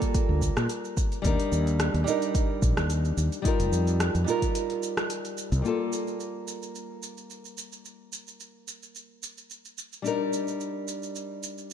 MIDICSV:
0, 0, Header, 1, 4, 480
1, 0, Start_track
1, 0, Key_signature, -2, "minor"
1, 0, Tempo, 550459
1, 1085, Time_signature, 4, 2, 24, 8
1, 10230, End_track
2, 0, Start_track
2, 0, Title_t, "Nylon-string guitar"
2, 0, Program_c, 0, 24
2, 0, Note_on_c, 0, 55, 80
2, 0, Note_on_c, 0, 58, 76
2, 0, Note_on_c, 0, 65, 70
2, 0, Note_on_c, 0, 69, 80
2, 1047, Note_off_c, 0, 55, 0
2, 1055, Note_off_c, 0, 58, 0
2, 1062, Note_off_c, 0, 65, 0
2, 1062, Note_on_c, 0, 55, 80
2, 1071, Note_off_c, 0, 69, 0
2, 1077, Note_on_c, 0, 62, 72
2, 1091, Note_on_c, 0, 63, 77
2, 1109, Note_on_c, 0, 70, 87
2, 1767, Note_off_c, 0, 55, 0
2, 1774, Note_off_c, 0, 62, 0
2, 1778, Note_on_c, 0, 55, 77
2, 1781, Note_off_c, 0, 63, 0
2, 1790, Note_off_c, 0, 70, 0
2, 1794, Note_on_c, 0, 62, 71
2, 1808, Note_on_c, 0, 63, 73
2, 1826, Note_on_c, 0, 70, 83
2, 2965, Note_off_c, 0, 55, 0
2, 2973, Note_off_c, 0, 62, 0
2, 2980, Note_off_c, 0, 63, 0
2, 2982, Note_on_c, 0, 55, 81
2, 2989, Note_off_c, 0, 70, 0
2, 2999, Note_on_c, 0, 63, 72
2, 3014, Note_on_c, 0, 65, 73
2, 3030, Note_on_c, 0, 70, 85
2, 3687, Note_off_c, 0, 55, 0
2, 3695, Note_off_c, 0, 63, 0
2, 3699, Note_on_c, 0, 55, 73
2, 3703, Note_off_c, 0, 65, 0
2, 3711, Note_off_c, 0, 70, 0
2, 3717, Note_on_c, 0, 63, 69
2, 3731, Note_on_c, 0, 65, 72
2, 3747, Note_on_c, 0, 70, 90
2, 4885, Note_off_c, 0, 55, 0
2, 4894, Note_off_c, 0, 63, 0
2, 4899, Note_on_c, 0, 55, 62
2, 4901, Note_off_c, 0, 65, 0
2, 4909, Note_off_c, 0, 70, 0
2, 4915, Note_on_c, 0, 58, 58
2, 4931, Note_on_c, 0, 65, 61
2, 4948, Note_on_c, 0, 69, 71
2, 8725, Note_off_c, 0, 55, 0
2, 8733, Note_off_c, 0, 58, 0
2, 8739, Note_on_c, 0, 55, 63
2, 8742, Note_off_c, 0, 65, 0
2, 8750, Note_off_c, 0, 69, 0
2, 8754, Note_on_c, 0, 62, 60
2, 8769, Note_on_c, 0, 63, 59
2, 8785, Note_on_c, 0, 70, 72
2, 10230, Note_off_c, 0, 55, 0
2, 10230, Note_off_c, 0, 62, 0
2, 10230, Note_off_c, 0, 63, 0
2, 10230, Note_off_c, 0, 70, 0
2, 10230, End_track
3, 0, Start_track
3, 0, Title_t, "Fretless electric bass"
3, 0, Program_c, 1, 35
3, 253, Note_on_c, 1, 38, 86
3, 424, Note_off_c, 1, 38, 0
3, 493, Note_on_c, 1, 46, 85
3, 575, Note_off_c, 1, 46, 0
3, 1086, Note_on_c, 1, 39, 93
3, 1180, Note_off_c, 1, 39, 0
3, 1326, Note_on_c, 1, 39, 88
3, 1639, Note_off_c, 1, 39, 0
3, 1693, Note_on_c, 1, 39, 86
3, 1775, Note_off_c, 1, 39, 0
3, 2287, Note_on_c, 1, 34, 85
3, 2380, Note_off_c, 1, 34, 0
3, 2414, Note_on_c, 1, 39, 74
3, 2717, Note_off_c, 1, 39, 0
3, 2766, Note_on_c, 1, 39, 79
3, 2860, Note_off_c, 1, 39, 0
3, 3134, Note_on_c, 1, 29, 90
3, 3215, Note_off_c, 1, 29, 0
3, 3244, Note_on_c, 1, 41, 86
3, 3558, Note_off_c, 1, 41, 0
3, 3616, Note_on_c, 1, 41, 84
3, 3696, Note_off_c, 1, 41, 0
3, 4812, Note_on_c, 1, 36, 97
3, 4894, Note_off_c, 1, 36, 0
3, 10230, End_track
4, 0, Start_track
4, 0, Title_t, "Drums"
4, 15, Note_on_c, 9, 42, 41
4, 16, Note_on_c, 9, 36, 58
4, 17, Note_on_c, 9, 82, 33
4, 102, Note_off_c, 9, 42, 0
4, 103, Note_off_c, 9, 36, 0
4, 104, Note_off_c, 9, 82, 0
4, 126, Note_on_c, 9, 42, 62
4, 127, Note_on_c, 9, 36, 116
4, 128, Note_on_c, 9, 82, 41
4, 214, Note_off_c, 9, 36, 0
4, 214, Note_off_c, 9, 42, 0
4, 215, Note_off_c, 9, 82, 0
4, 366, Note_on_c, 9, 36, 54
4, 366, Note_on_c, 9, 82, 68
4, 453, Note_off_c, 9, 36, 0
4, 453, Note_off_c, 9, 82, 0
4, 495, Note_on_c, 9, 37, 72
4, 497, Note_on_c, 9, 82, 30
4, 582, Note_off_c, 9, 37, 0
4, 584, Note_off_c, 9, 82, 0
4, 605, Note_on_c, 9, 42, 61
4, 607, Note_on_c, 9, 82, 41
4, 693, Note_off_c, 9, 42, 0
4, 695, Note_off_c, 9, 82, 0
4, 738, Note_on_c, 9, 82, 30
4, 825, Note_off_c, 9, 82, 0
4, 846, Note_on_c, 9, 36, 94
4, 848, Note_on_c, 9, 82, 66
4, 934, Note_off_c, 9, 36, 0
4, 935, Note_off_c, 9, 82, 0
4, 976, Note_on_c, 9, 42, 27
4, 978, Note_on_c, 9, 82, 29
4, 1063, Note_off_c, 9, 42, 0
4, 1065, Note_off_c, 9, 82, 0
4, 1087, Note_on_c, 9, 36, 109
4, 1087, Note_on_c, 9, 42, 63
4, 1089, Note_on_c, 9, 82, 41
4, 1174, Note_off_c, 9, 36, 0
4, 1174, Note_off_c, 9, 42, 0
4, 1176, Note_off_c, 9, 82, 0
4, 1217, Note_on_c, 9, 42, 43
4, 1304, Note_off_c, 9, 42, 0
4, 1329, Note_on_c, 9, 82, 66
4, 1416, Note_off_c, 9, 82, 0
4, 1457, Note_on_c, 9, 42, 31
4, 1459, Note_on_c, 9, 82, 31
4, 1544, Note_off_c, 9, 42, 0
4, 1546, Note_off_c, 9, 82, 0
4, 1567, Note_on_c, 9, 37, 77
4, 1567, Note_on_c, 9, 42, 63
4, 1569, Note_on_c, 9, 82, 39
4, 1654, Note_off_c, 9, 37, 0
4, 1654, Note_off_c, 9, 42, 0
4, 1656, Note_off_c, 9, 82, 0
4, 1696, Note_on_c, 9, 42, 30
4, 1783, Note_off_c, 9, 42, 0
4, 1808, Note_on_c, 9, 82, 73
4, 1896, Note_off_c, 9, 82, 0
4, 1936, Note_on_c, 9, 42, 42
4, 1938, Note_on_c, 9, 82, 31
4, 2023, Note_off_c, 9, 42, 0
4, 2025, Note_off_c, 9, 82, 0
4, 2047, Note_on_c, 9, 36, 111
4, 2048, Note_on_c, 9, 42, 67
4, 2050, Note_on_c, 9, 82, 41
4, 2134, Note_off_c, 9, 36, 0
4, 2135, Note_off_c, 9, 42, 0
4, 2137, Note_off_c, 9, 82, 0
4, 2287, Note_on_c, 9, 36, 93
4, 2288, Note_on_c, 9, 82, 69
4, 2374, Note_off_c, 9, 36, 0
4, 2376, Note_off_c, 9, 82, 0
4, 2417, Note_on_c, 9, 37, 71
4, 2419, Note_on_c, 9, 82, 29
4, 2504, Note_off_c, 9, 37, 0
4, 2506, Note_off_c, 9, 82, 0
4, 2527, Note_on_c, 9, 42, 62
4, 2529, Note_on_c, 9, 82, 38
4, 2615, Note_off_c, 9, 42, 0
4, 2616, Note_off_c, 9, 82, 0
4, 2659, Note_on_c, 9, 82, 30
4, 2746, Note_off_c, 9, 82, 0
4, 2769, Note_on_c, 9, 82, 69
4, 2857, Note_off_c, 9, 82, 0
4, 2898, Note_on_c, 9, 42, 30
4, 2900, Note_on_c, 9, 82, 29
4, 2985, Note_off_c, 9, 42, 0
4, 2987, Note_off_c, 9, 82, 0
4, 3007, Note_on_c, 9, 36, 109
4, 3009, Note_on_c, 9, 42, 64
4, 3011, Note_on_c, 9, 82, 39
4, 3094, Note_off_c, 9, 36, 0
4, 3096, Note_off_c, 9, 42, 0
4, 3098, Note_off_c, 9, 82, 0
4, 3137, Note_on_c, 9, 42, 45
4, 3139, Note_on_c, 9, 82, 28
4, 3224, Note_off_c, 9, 42, 0
4, 3226, Note_off_c, 9, 82, 0
4, 3250, Note_on_c, 9, 82, 69
4, 3337, Note_off_c, 9, 82, 0
4, 3378, Note_on_c, 9, 42, 32
4, 3380, Note_on_c, 9, 82, 30
4, 3465, Note_off_c, 9, 42, 0
4, 3467, Note_off_c, 9, 82, 0
4, 3490, Note_on_c, 9, 37, 77
4, 3490, Note_on_c, 9, 42, 63
4, 3491, Note_on_c, 9, 82, 41
4, 3577, Note_off_c, 9, 37, 0
4, 3577, Note_off_c, 9, 42, 0
4, 3579, Note_off_c, 9, 82, 0
4, 3617, Note_on_c, 9, 42, 29
4, 3619, Note_on_c, 9, 82, 28
4, 3705, Note_off_c, 9, 42, 0
4, 3706, Note_off_c, 9, 82, 0
4, 3729, Note_on_c, 9, 82, 70
4, 3816, Note_off_c, 9, 82, 0
4, 3856, Note_on_c, 9, 36, 56
4, 3857, Note_on_c, 9, 42, 46
4, 3859, Note_on_c, 9, 82, 32
4, 3943, Note_off_c, 9, 36, 0
4, 3944, Note_off_c, 9, 42, 0
4, 3946, Note_off_c, 9, 82, 0
4, 3969, Note_on_c, 9, 42, 69
4, 3971, Note_on_c, 9, 82, 40
4, 4056, Note_off_c, 9, 42, 0
4, 4058, Note_off_c, 9, 82, 0
4, 4097, Note_on_c, 9, 42, 32
4, 4184, Note_off_c, 9, 42, 0
4, 4210, Note_on_c, 9, 82, 73
4, 4297, Note_off_c, 9, 82, 0
4, 4337, Note_on_c, 9, 37, 75
4, 4339, Note_on_c, 9, 82, 30
4, 4424, Note_off_c, 9, 37, 0
4, 4426, Note_off_c, 9, 82, 0
4, 4447, Note_on_c, 9, 42, 65
4, 4449, Note_on_c, 9, 82, 40
4, 4534, Note_off_c, 9, 42, 0
4, 4536, Note_off_c, 9, 82, 0
4, 4577, Note_on_c, 9, 42, 32
4, 4578, Note_on_c, 9, 82, 30
4, 4664, Note_off_c, 9, 42, 0
4, 4666, Note_off_c, 9, 82, 0
4, 4689, Note_on_c, 9, 82, 70
4, 4776, Note_off_c, 9, 82, 0
4, 4815, Note_on_c, 9, 42, 30
4, 4817, Note_on_c, 9, 82, 31
4, 4903, Note_off_c, 9, 42, 0
4, 4904, Note_off_c, 9, 82, 0
4, 4928, Note_on_c, 9, 82, 37
4, 5016, Note_off_c, 9, 82, 0
4, 5168, Note_on_c, 9, 82, 63
4, 5255, Note_off_c, 9, 82, 0
4, 5298, Note_on_c, 9, 82, 27
4, 5385, Note_off_c, 9, 82, 0
4, 5408, Note_on_c, 9, 82, 37
4, 5496, Note_off_c, 9, 82, 0
4, 5648, Note_on_c, 9, 82, 66
4, 5735, Note_off_c, 9, 82, 0
4, 5778, Note_on_c, 9, 82, 27
4, 5865, Note_off_c, 9, 82, 0
4, 5889, Note_on_c, 9, 82, 36
4, 5977, Note_off_c, 9, 82, 0
4, 6128, Note_on_c, 9, 82, 62
4, 6215, Note_off_c, 9, 82, 0
4, 6257, Note_on_c, 9, 82, 28
4, 6344, Note_off_c, 9, 82, 0
4, 6368, Note_on_c, 9, 82, 37
4, 6455, Note_off_c, 9, 82, 0
4, 6496, Note_on_c, 9, 82, 25
4, 6583, Note_off_c, 9, 82, 0
4, 6606, Note_on_c, 9, 82, 65
4, 6694, Note_off_c, 9, 82, 0
4, 6736, Note_on_c, 9, 82, 28
4, 6823, Note_off_c, 9, 82, 0
4, 6847, Note_on_c, 9, 82, 38
4, 6934, Note_off_c, 9, 82, 0
4, 7086, Note_on_c, 9, 82, 62
4, 7174, Note_off_c, 9, 82, 0
4, 7216, Note_on_c, 9, 82, 28
4, 7304, Note_off_c, 9, 82, 0
4, 7327, Note_on_c, 9, 82, 38
4, 7414, Note_off_c, 9, 82, 0
4, 7567, Note_on_c, 9, 82, 68
4, 7654, Note_off_c, 9, 82, 0
4, 7698, Note_on_c, 9, 82, 31
4, 7785, Note_off_c, 9, 82, 0
4, 7808, Note_on_c, 9, 82, 36
4, 7896, Note_off_c, 9, 82, 0
4, 8048, Note_on_c, 9, 82, 71
4, 8135, Note_off_c, 9, 82, 0
4, 8177, Note_on_c, 9, 82, 30
4, 8264, Note_off_c, 9, 82, 0
4, 8288, Note_on_c, 9, 82, 38
4, 8375, Note_off_c, 9, 82, 0
4, 8416, Note_on_c, 9, 82, 30
4, 8503, Note_off_c, 9, 82, 0
4, 8527, Note_on_c, 9, 82, 68
4, 8615, Note_off_c, 9, 82, 0
4, 8656, Note_on_c, 9, 82, 27
4, 8743, Note_off_c, 9, 82, 0
4, 8767, Note_on_c, 9, 82, 39
4, 8854, Note_off_c, 9, 82, 0
4, 9008, Note_on_c, 9, 82, 65
4, 9096, Note_off_c, 9, 82, 0
4, 9136, Note_on_c, 9, 82, 30
4, 9224, Note_off_c, 9, 82, 0
4, 9246, Note_on_c, 9, 82, 40
4, 9334, Note_off_c, 9, 82, 0
4, 9487, Note_on_c, 9, 82, 71
4, 9574, Note_off_c, 9, 82, 0
4, 9617, Note_on_c, 9, 82, 28
4, 9704, Note_off_c, 9, 82, 0
4, 9728, Note_on_c, 9, 82, 38
4, 9815, Note_off_c, 9, 82, 0
4, 9969, Note_on_c, 9, 82, 64
4, 10056, Note_off_c, 9, 82, 0
4, 10098, Note_on_c, 9, 82, 30
4, 10185, Note_off_c, 9, 82, 0
4, 10230, End_track
0, 0, End_of_file